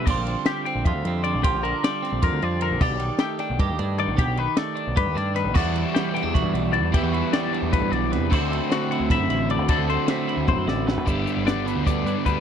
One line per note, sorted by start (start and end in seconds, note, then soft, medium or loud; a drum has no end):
0.05 0.15 A#1 loud
0.05 0.26 A#2 medium
0.05 0.26 D3 medium
0.05 0.47 G3 medium
0.05 0.45 D5 medium
0.05 kick loud
0.05 crash loud
0.10 0.66 C4 medium
0.10 0.86 F4 medium
0.17 0.35 A#1 loud
0.27 1.24 D3 medium
0.27 ride medium
0.46 1.83 G3 medium
0.46 0.65 G4 medium
0.46 snare loud
0.46 ride loud
0.66 1.05 C4 medium
0.66 0.85 G5 medium
0.66 ride medium
0.75 0.84 A#1 medium
0.85 0.94 F2 loud
0.85 1.42 F4 medium
0.85 1.23 E5 medium
0.85 kick loud
0.85 ride loud
0.95 1.04 D2 medium
1.05 1.36 F2 loud
1.05 1.43 C4 medium
1.05 ride medium
1.24 1.62 D3 medium
1.24 1.43 D5 medium
1.24 ride medium
1.34 1.43 A#1 medium
1.43 1.53 A#1 loud
1.43 1.63 A#2 medium
1.43 2.21 F4 medium
1.43 1.63 G4 medium
1.43 kick loud
1.43 ride loud
1.54 1.72 A#1 medium
1.63 2.61 D3 medium
1.63 1.83 A#4 medium
1.63 ride medium
1.83 3.20 G3 medium
1.83 2.23 D5 medium
1.83 snare loud
1.83 ride loud
2.02 2.42 C4 medium
2.02 snare soft
2.02 ride medium
2.12 2.21 A#1 medium
2.22 2.31 F2 loud
2.22 2.79 F4 medium
2.22 2.43 A#4 medium
2.22 kick loud
2.22 ride loud
2.32 2.41 D2 medium
2.42 2.73 F2 medium
2.42 2.79 C4 medium
2.42 2.62 D5 medium
2.42 ride medium
2.61 2.99 D3 medium
2.61 2.81 A#4 medium
2.61 ride medium
2.71 2.80 A#1 medium
2.81 2.90 B1 loud
2.81 3.00 B2 medium
2.81 3.60 G4 medium
2.81 3.20 D5 medium
2.81 kick loud
2.81 crash medium
2.91 3.09 B1 loud
3.00 3.98 D#3 medium
3.00 ride medium
3.19 4.20 A3 medium
3.19 3.40 G4 medium
3.19 snare loud
3.19 ride medium
3.39 3.78 D4 medium
3.39 3.60 G5 medium
3.39 snare soft
3.39 ride medium
3.50 3.59 B1 medium
3.59 3.69 G2 loud
3.59 4.17 G4 medium
3.59 3.99 D#5 medium
3.59 kick loud
3.59 ride loud
3.69 3.79 D#2 medium
3.79 4.09 G2 medium
3.79 4.41 D4 medium
3.79 ride medium
3.98 4.16 D#3 medium
3.98 4.19 D5 medium
3.98 ride medium
4.07 4.17 B1 medium
4.17 4.27 B1 loud
4.17 4.37 B2 medium
4.17 4.95 G4 medium
4.17 4.39 G4 medium
4.17 kick loud
4.17 ride loud
4.27 4.46 B1 medium
4.37 5.33 D#3 medium
4.37 4.57 B4 medium
4.37 ride medium
4.57 5.94 A3 medium
4.57 4.97 D5 medium
4.57 snare loud
4.57 ride loud
4.75 5.15 D4 medium
4.75 ride medium
4.87 4.96 B1 medium
4.96 5.06 G2 loud
4.96 5.54 G4 medium
4.96 5.17 B4 medium
4.96 kick loud
4.96 ride loud
5.07 5.15 D#2 medium
5.15 5.46 G2 medium
5.15 5.57 D4 medium
5.15 5.35 D5 medium
5.15 snare soft
5.15 ride medium
5.34 5.53 D#3 medium
5.34 5.56 B4 medium
5.34 snare soft
5.34 ride medium
5.45 5.55 B1 medium
5.54 6.92 E2 medium
5.54 5.64 E2 loud
5.54 6.92 E3 medium
5.54 6.93 G3 medium
5.54 6.93 B3 medium
5.54 6.34 F#4 medium
5.54 5.95 D5 medium
5.54 kick loud
5.54 crash loud
5.58 6.95 E4 medium
5.64 5.83 E2 loud
5.74 6.73 E3 medium
5.74 ride medium
5.94 7.32 G3 medium
5.94 6.15 G4 medium
5.94 snare loud
5.94 ride loud
6.14 6.23 B3 medium
6.14 6.34 G5 medium
6.14 snare soft
6.14 ride medium
6.23 6.33 E2 medium
6.23 6.53 D4 medium
6.34 6.42 B1 loud
6.34 6.93 F#4 medium
6.34 6.74 E5 medium
6.34 kick loud
6.34 ride loud
6.43 6.53 G2 medium
6.53 6.83 B1 medium
6.53 6.96 D4 medium
6.53 ride medium
6.73 7.07 E3 medium
6.73 6.93 D5 medium
6.73 ride medium
6.83 6.93 E2 medium
6.92 8.31 E2 medium
6.92 7.02 E2 medium
6.92 8.30 E3 medium
6.92 8.30 G3 medium
6.92 8.30 B3 loud
6.92 7.04 E4 medium
6.92 8.32 E4 loud
6.92 7.13 G4 medium
6.92 kick loud
6.92 ride medium
7.03 7.21 E2 loud
7.03 8.31 F#4 medium
7.13 8.31 E3 medium
7.13 7.33 B4 medium
7.13 ride medium
7.33 8.31 G3 medium
7.33 7.72 D5 medium
7.33 snare loud
7.33 ride loud
7.53 8.32 D4 medium
7.53 ride medium
7.62 7.72 E2 medium
7.71 7.81 B1 loud
7.71 7.90 A2 medium
7.71 7.92 B4 medium
7.71 kick loud
7.71 ride loud
7.82 7.91 G2 medium
7.90 8.20 B1 medium
7.90 8.10 B2 medium
7.90 8.12 D5 medium
7.90 ride medium
8.10 8.31 C3 medium
8.10 8.33 B4 medium
8.10 snare soft
8.10 ride medium
8.20 8.30 E2 medium
8.30 8.40 D2 loud
8.30 9.67 D3 medium
8.30 9.68 D3 medium
8.30 9.67 A3 loud
8.30 8.51 A3 medium
8.30 9.68 C4 medium
8.30 8.70 C4 medium
8.30 8.92 E4 medium
8.30 9.69 F#4 loud
8.30 8.71 C5 loud
8.30 kick loud
8.30 crash medium
8.40 8.59 D2 medium
8.51 9.49 A3 medium
8.51 ride medium
8.71 9.67 C4 medium
8.71 8.91 F#4 medium
8.71 snare loud
8.71 ride loud
8.91 9.10 E4 medium
8.91 9.10 F#5 medium
8.91 ride medium
9.00 9.09 D2 medium
9.10 9.19 A1 loud
9.10 9.30 E4 medium
9.10 9.50 E5 medium
9.10 kick loud
9.10 snare soft
9.10 ride loud
9.20 9.29 F#2 medium
9.30 9.59 A1 medium
9.30 9.70 E4 medium
9.30 ride medium
9.50 9.67 A3 medium
9.50 9.70 D5 medium
9.50 ride medium
9.59 9.68 D2 medium
9.69 9.77 D2 medium
9.69 11.05 D3 medium
9.69 11.64 D3 medium
9.69 11.06 A3 medium
9.69 11.07 C4 medium
9.69 10.27 E4 medium
9.69 11.07 F#4 loud
9.69 9.89 A4 medium
9.69 kick loud
9.69 ride loud
9.78 9.97 D2 medium
9.89 10.86 A3 medium
9.89 10.09 C5 medium
9.89 snare soft
9.89 ride medium
10.08 11.06 C4 medium
10.08 10.48 E5 medium
10.08 snare loud
10.08 ride loud
10.28 10.46 E4 medium
10.28 ride medium
10.37 10.47 D2 medium
10.48 10.55 A1 loud
10.48 10.66 E4 medium
10.48 10.68 C5 medium
10.48 kick loud
10.48 high tom medium
10.56 10.66 F#2 medium
10.66 10.98 A1 medium
10.66 11.06 E4 medium
10.66 10.87 D5 medium
10.66 snare medium
10.87 11.04 A3 medium
10.87 11.08 B4 medium
10.87 snare loud
10.98 11.07 D2 medium
11.05 11.25 G1 medium
11.05 11.84 G2 medium
11.05 12.23 G2 medium
11.05 11.43 D3 medium
11.05 11.26 G3 medium
11.05 11.26 B3 medium
11.05 11.24 D4 loud
11.05 12.40 E4 medium
11.05 11.46 G4 medium
11.05 kick medium
11.05 closed hi-hat medium
11.24 11.44 G3 medium
11.24 11.45 B3 medium
11.24 11.46 D4 medium
11.24 closed hi-hat medium
11.37 11.55 G1 medium
11.44 11.84 D3 medium
11.44 11.68 G3 medium
11.44 11.66 B3 medium
11.44 12.06 B3 medium
11.44 11.65 D4 medium
11.44 11.66 D5 medium
11.44 snare loud
11.44 closed hi-hat medium
11.56 11.74 G1 medium
11.65 12.40 D3 medium
11.65 11.86 G3 medium
11.65 11.86 B3 medium
11.65 11.86 D4 medium
11.65 11.86 B4 medium
11.65 closed hi-hat medium
11.76 12.03 D2 medium
11.84 12.40 G2 medium
11.84 12.23 D3 medium
11.84 12.25 G3 medium
11.84 12.25 B3 loud
11.84 12.40 D4 medium
11.84 12.26 D4 medium
11.84 12.26 D5 medium
11.84 kick loud
11.84 closed hi-hat medium
12.04 12.14 G2 medium
12.04 12.40 B3 medium
12.04 closed hi-hat medium
12.24 12.35 D2 medium
12.24 12.40 G2 medium
12.24 12.40 D3 medium
12.24 12.40 G3 medium
12.24 12.40 B3 medium
12.24 12.40 D4 medium
12.24 12.40 B4 medium
12.24 kick medium
12.24 closed hi-hat medium